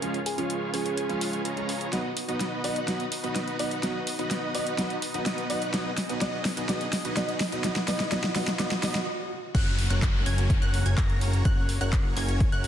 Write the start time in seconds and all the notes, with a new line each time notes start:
Already playing: G#3 C#4 F4
0.02 F3 G#3 C#4 F4 G#4 B4 C#5 F5, closed hi-hat
0.14 closed hi-hat
0.26 G#4, open hi-hat
0.38 F3 G#3 C#4 F4 G#4 C#5 F5, closed hi-hat
0.50 closed hi-hat
0.73 F3 G#3 C#4 F4 G#4 C#5 G#5, open hi-hat
0.86 closed hi-hat
0.97 closed hi-hat
1.09 F3 G#3 C#4 F4 G#4 C#5 F5, closed hi-hat
1.21 open hi-hat
1.33 C#4 F4 G#4 C#5 G#5, closed hi-hat
1.45 C#4 F4 G#4 C#5 A#5, closed hi-hat
1.56 F3 G#3 C#4 F4, closed hi-hat
1.69 open hi-hat
1.81 closed hi-hat
1.92 F#3 B3 D#4 F#4 B4 D#5, snare, closed hi-hat, riser
2.17 open hi-hat
2.28 F#3 B3 D#4 F#4 B4 D#5, closed hi-hat
2.40 snare, closed hi-hat
2.64 F#3 B3 D#4 F#4 B4 D#5 F#5, open hi-hat
2.76 closed hi-hat
2.87 F#3 B3 D#4 F#4 B4 D#5, snare, closed hi-hat
3.00 closed hi-hat
3.12 open hi-hat
3.23 F#3 B3 D#4 F#4 B4 D#5, closed hi-hat
3.36 snare, closed hi-hat
3.48 closed hi-hat
3.59 F#3 B3 D#4 F#4 B4 D#5 F#5, open hi-hat
3.71 closed hi-hat
3.83 F#3 B3 D#4 F#4 B4 D#5, snare, closed hi-hat
4.07 open hi-hat
4.18 F#3 B3 D#4 F#4 B4 D#5, closed hi-hat
4.31 snare, closed hi-hat
4.54 F#3 B3 D#4 F#4 B4 D#5 F#5, open hi-hat
4.67 closed hi-hat
4.78 F#3 B3 D#4 F#4 B4 D#5, snare, closed hi-hat
4.90 closed hi-hat
5.02 open hi-hat
5.14 F#3 B3 D#4 F#4 B4 D#5, closed hi-hat
5.26 snare, closed hi-hat
5.38 closed hi-hat
5.49 F#3 B3 D#4 F#4 B4 D#5 F#5, open hi-hat
5.62 closed hi-hat
5.73 F#3 B3 D#4 F#4 G#4 B4 D#5, snare, closed hi-hat
5.98 snare, open hi-hat
6.09 F#3 B3 D#4 F#4 B4 D#5, closed hi-hat
6.21 F#3 B3 D#4 F#4 B4 D#5, snare, closed hi-hat
6.45 snare, open hi-hat
6.57 F#3 B3 D#4 F#4 B4 D#5, closed hi-hat
6.68 F#3 B3 D#4 F#4 B4 D#5, snare, closed hi-hat
6.81 closed hi-hat
6.93 snare, open hi-hat
7.04 F#3 B3 D#4 F#4 B4 D#5, closed hi-hat
7.16 F#3 B3 D#4 F#4 B4 D#5, snare, closed hi-hat
7.29 closed hi-hat
7.40 snare, open hi-hat
7.52 F#3 B3 D#4 F#4 B4 D#5, closed hi-hat
7.64 F#3 B3 D#4 F#4 B4 D#5, snare, closed hi-hat
7.76 snare, closed hi-hat
7.88 F#3 B3 D#4 F#4 B4 D#5, snare, open hi-hat
8.00 snare, closed hi-hat
8.11 F#3 B3 D#4 F#4 B4 D#5, snare, closed hi-hat
8.24 snare
8.35 F#3 B3 D#4 F#4 B4 D#5, snare, open hi-hat
8.47 snare, closed hi-hat
8.59 F#3 B3 D#4 F#4 B4 D#5, snare, closed hi-hat
8.71 snare, closed hi-hat
8.83 F#3 B3 D#4 F#4 B4 D#5, snare, open hi-hat
8.95 snare, closed hi-hat
9.55 F#1 A#3 C#4 F#4 A#4 C#5 F#5 F#6, kick, closed hi-hat, crash, downlifter
9.79 open hi-hat
9.90 F#1 C#4 F#4 A#4 C#5 F#5 F#6, closed hi-hat
10.02 kick, clap, closed hi-hat
10.26 F#1 C#4 F#4 A#4 C#5 G#5 G#6, open hi-hat
10.38 closed hi-hat
10.50 kick, closed hi-hat
10.62 F#1 C#4 F#4 A#4 C#5 F#5 F#6, closed hi-hat
10.74 open hi-hat
10.86 F#1 C#4 F#4 A#4 C#5 G#5 G#6, closed hi-hat
10.98 F#1 C#4 F#4 A#4 C#5 A#5 A#6, kick, clap, closed hi-hat
11.10 closed hi-hat
11.21 open hi-hat
11.33 closed hi-hat
11.45 F#1 C#4 F#4 A#4 C#5 F#5 F#6, kick, closed hi-hat
11.69 open hi-hat
11.81 F#1 C#4 F#4 A#4 C#5 F#5 F#6, closed hi-hat
11.93 kick, clap, closed hi-hat
12.17 F#1 C#4 F#4 A#4 C#5 G#5 G#6, clap, open hi-hat
12.29 closed hi-hat
12.40 kick, closed hi-hat
12.52 F#1 C#4 F#4 A#4 C#5 F#5 F#6, closed hi-hat
12.64 open hi-hat